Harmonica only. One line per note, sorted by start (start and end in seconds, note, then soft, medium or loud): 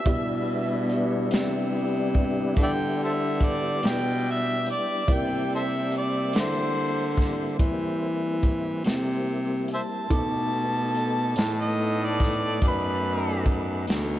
0.00 0.88 E5 medium
2.63 2.71 D5 medium
2.63 2.70 E5 medium
2.63 3.01 G5 loud
3.04 3.11 A4 soft
3.04 3.13 C5 soft
3.04 3.46 E5 medium
3.45 3.90 D5 medium
3.88 4.32 G5 medium
4.31 4.68 E5 medium
4.71 5.14 D5 medium
5.13 5.51 G5 medium
5.55 5.62 A4 medium
5.55 5.63 C5 medium
5.55 5.93 E5 medium
5.97 6.35 D5 medium
6.39 7.18 C5 medium
9.74 9.81 C5 medium
9.74 9.81 E5 medium
9.74 11.63 A5 loud
11.62 12.07 D#5 medium
12.05 12.63 D5 medium
12.67 13.46 B4 medium